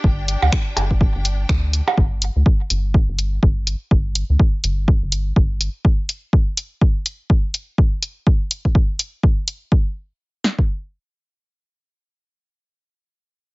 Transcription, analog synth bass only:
X:1
M:4/4
L:1/16
Q:"Swing 16ths" 1/4=124
K:Cdor
V:1 name="Analog synth bass" clef=bass
G,,,3 D,, z2 G,,,3 G,,,3 D,,3 z | G,,,3 D,, z2 G,,,3 G,,,3 G,,,3 z | G,,,3 D,, z2 G,,,3 G,,,3 G,,,3 z | z16 |
z16 | z16 | z16 |]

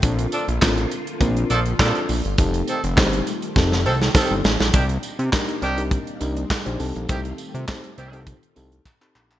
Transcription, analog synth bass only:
X:1
M:4/4
L:1/16
Q:1/4=102
K:Fmix
V:1 name="Analog synth bass" clef=bass
B,,,2 z B,,, A,,,2 z2 B,,,2 B,,,2 B,, z B,,, G,,, | F,,,2 z F,,, G,,,2 z2 F,,,2 C,,2 z G,,, A,,, B,,, | C,,2 z C, z2 C,,3 z C,,2 z B,,, C,, B,,, | C,,2 z C, z2 C,,3 z C,,2 z2 B,,,2 |]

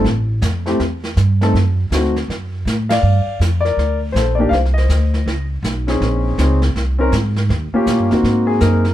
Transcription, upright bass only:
X:1
M:4/4
L:1/8
Q:"Swing" 1/4=161
K:Dm
V:1 name="Upright bass" clef=bass
A,,,2 F,,2 E,,2 G,,2 | ^F,,2 D,,2 F,,2 A,,2 | G,, z F,,2 D,,2 B,,,2 | C,,2 D,,2 ^C,,2 =B,,,2 |
B,,,2 _D,,2 C,,2 _A,,2 | _E,, z (3B,, G,, E,, _A,,2 _G,,2 |]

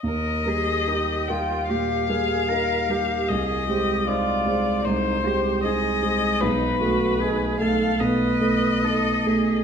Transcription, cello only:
X:1
M:4/4
L:1/8
Q:1/4=76
K:Eb
V:1 name="Cello"
B A G F G A B G | A G F2 E G A2 | ^D _G A =A =B2 A _A |]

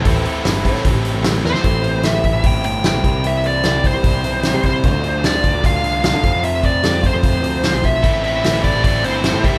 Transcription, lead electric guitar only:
X:1
M:4/4
L:1/8
Q:1/4=150
K:Am
V:1 name="Lead electric guitar"
z6 z c- | c2 e2 g g g2 | e d2 c4 c- | c2 d2 f2 f2 |
e d2 c4 e- | e e2 d d c2 e |]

